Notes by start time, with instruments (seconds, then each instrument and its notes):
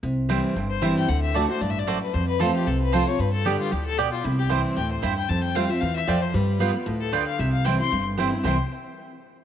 0.03 upright bass C2, steel-string acoustic guitar C3
0.29 steel-string acoustic guitar E3 G3 C4 E4, mandolin C4 E4 C5 G5
0.56 upright bass G1, steel-string acoustic guitar G2
0.70 fiddle C5
0.82 steel-string acoustic guitar E3 G3 C4 E4, mandolin C4 E4 C5 G5, fiddle E5
0.97 fiddle G5
1.08 upright bass D2, steel-string acoustic guitar D3, fiddle F#5
1.22 fiddle E5
1.34 steel-string acoustic guitar D3 A3 D4 F#4, mandolin A3 F#4 D5 A5, fiddle D5
1.49 steel-string acoustic guitar D4 F#4, fiddle C5
1.61 upright bass A1, steel-string acoustic guitar G2, fiddle D5
1.70 fiddle E5
1.79 fiddle D5
1.87 steel-string acoustic guitar F#2, mandolin A3 F#4 D5 A5, fiddle C5
2.02 fiddle B4
2.14 steel-string acoustic guitar F2, upright bass F2, fiddle C5
2.28 fiddle B4
2.39 steel-string acoustic guitar F3 A3 C4 F4, mandolin C4 F4 C5 A5, fiddle A4
2.55 fiddle G4
2.66 upright bass C2, steel-string acoustic guitar C3, fiddle A4
2.81 fiddle B4
2.92 steel-string acoustic guitar F3 A3 C4 F4, mandolin C4 F4 C5 A5, fiddle C5
3.07 steel-string acoustic guitar C4 F4, fiddle C#5
3.19 upright bass G2, steel-string acoustic guitar G2, fiddle B4
3.33 fiddle A4
3.45 steel-string acoustic guitar D3 G3 B3 G4, mandolin B3 G4 D5 G5, fiddle G4
3.59 fiddle F4
3.72 upright bass D2, steel-string acoustic guitar A2, fiddle G4
3.86 fiddle A4
3.98 steel-string acoustic guitar B2, mandolin B3 G4 D5 G5, fiddle G4
4.12 fiddle F4
4.24 upright bass C2, steel-string acoustic guitar C3, fiddle E4
4.38 fiddle G4
4.49 steel-string acoustic guitar E3 G3 C4 E4, mandolin C4 E4 C5 G5
4.76 upright bass D2, steel-string acoustic guitar A2, fiddle G5
4.91 fiddle C5
5.02 upright bass E2, steel-string acoustic guitar G2, mandolin C4 E4 C5 G5, fiddle E5
5.17 fiddle G5
5.29 steel-string acoustic guitar F2, upright bass F2, fiddle A5
5.43 fiddle G5
5.55 steel-string acoustic guitar F3 G3 C4 F4, mandolin A3 F4 C5 G5, fiddle F5
5.69 steel-string acoustic guitar C4 F4, fiddle E5
5.80 upright bass E2, steel-string acoustic guitar E3, fiddle F5
5.96 fiddle E5
6.07 upright bass F2, steel-string acoustic guitar F3, mandolin A3 F4 C5 G5, fiddle D5
6.22 fiddle C5
6.34 upright bass G2, steel-string acoustic guitar G3, fiddle B4
6.59 steel-string acoustic guitar G3 B3 F4, mandolin B3 F4 B4 G5
6.74 steel-string acoustic guitar B3 F4
6.86 upright bass D2, steel-string acoustic guitar A2
7.00 fiddle A4
7.13 steel-string acoustic guitar D3, mandolin B3 F4 B4 G5, fiddle D5
7.27 fiddle F5
7.39 upright bass C2, steel-string acoustic guitar C3, fiddle E5
7.53 fiddle F5
7.65 steel-string acoustic guitar E3 G3 C4 E4, mandolin C4 E4 C5 G5, fiddle G5
7.79 steel-string acoustic guitar C4 E4, fiddle C6
7.92 upright bass G1, steel-string acoustic guitar G2
8.17 steel-string acoustic guitar E3 G3 C4 E4, mandolin C4 E4 C5 G5
8.32 steel-string acoustic guitar C4 E4
8.44 upright bass C2, steel-string acoustic guitar C3 E3 G3 C4 E4, mandolin C4 E4 C5 G5, fiddle C6